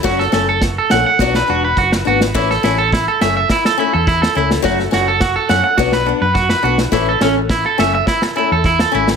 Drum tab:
SD |ooo-o-o-oo--oo-o|ooo-o-o-oo--oo-o|ooo-o-o-oo--oo-o|o-o-o-o-oo--oo-o|
BD |o---o---o---o---|o---o---o---o---|o---o---o---o---|o---o---o---o---|